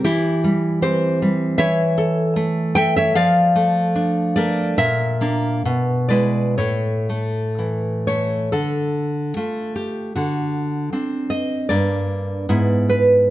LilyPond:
\new Staff \with { instrumentName = "Nylon-string guitar" } { \time 2/4 \key c \mixolydian \tempo 4 = 75 << { <e' g'>4 <g' c''>8 r8 | \key d \minor <cis'' e''>4. <e'' g''>16 <cis'' e''>16 | <d'' f''>4. <bes' d''>8 | <bes' e''>4. <b' d''>8 |
<a' cis''>4. cis''8 | a'4. g'8 | fis'4 r8 ees''8 | d''4. b'8 | } \\ { e8 g8 c'8 g8 | e8 a'8 a8 a'8 | f8 a8 d'8 a8 | bes,8 <bes d'>8 b,8 <gis e'>8 |
a,8 a8 e8 a8 | d4 <a f'>4 | d4 <c' d'>4 | <g, bes d'>4 <gis, b e'>4 | } >> }